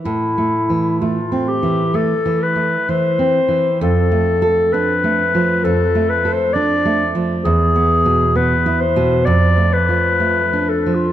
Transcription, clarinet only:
\new Staff \with { instrumentName = "Clarinet" } { \time 4/4 \key a \minor \tempo 4 = 65 e'4 f'8 g'8 a'8 b'8 c''4 | a'4 b'4 a'8 b'16 c''16 d''8. r16 | gis'4 b'8 c''8 d''8 b'4 a'16 f'16 | }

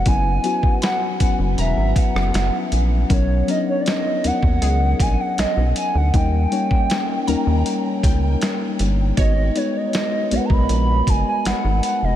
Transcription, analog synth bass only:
\new Staff \with { instrumentName = "Analog synth bass" } { \clef bass \time 4/4 \key b \major \tempo 4 = 79 fis,,8 r4 fis,,16 fis,,16 e,,16 gis,,16 r16 fis,,16 fis,,16 r16 ais,,8 | b,,8 r4 dis,16 dis,16 cis,8 ais,,16 r16 b,,16 b,,16 r16 d,16 | dis,8 r4 dis,16 dis,16 r8 cis,8 r8 g,,8 | gis,,8 r4 b,,16 b,,16 ais,,8 fis,,16 r16 gis,,16 gis,,16 r16 eis,,16 | }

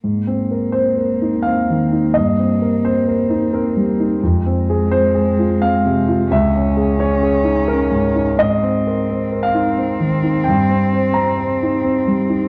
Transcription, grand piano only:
\new Staff \with { instrumentName = "Grand piano" } { \time 3/4 \key aes \major \tempo 4 = 87 << { r4 c''4 f''4 | ees''4 c''4 bes'4 | r4 c''4 f''4 | fes''4 des''4 bes'4 |
ees''4. f''4. | g''4 bes''4. r8 | } \\ { \tuplet 3/2 { aes,8 c'8 bes'8 c'8 bes'8 ees'8 c'8 ees8 ees'8 } | \tuplet 3/2 { g,8 c'8 bes'8 c'8 bes'8 ees'8 c'8 g8 ees'8 } | \tuplet 3/2 { f,8 c'8 aes'8 c'8 aes'8 f'8 c'8 c8 f'8 } | \tuplet 3/2 { des,8 des'8 aes'8 des'8 aes'8 ees'8 des'8 aes,8 ees'8 } |
\tuplet 3/2 { aes,8 c'8 bes'8 c'8 bes'8 ees'8 c'8 ees8 ees'8 } | \tuplet 3/2 { g,8 c'8 c''8 c'8 c''8 ees'8 c'8 g8 ees'8 } | } >> }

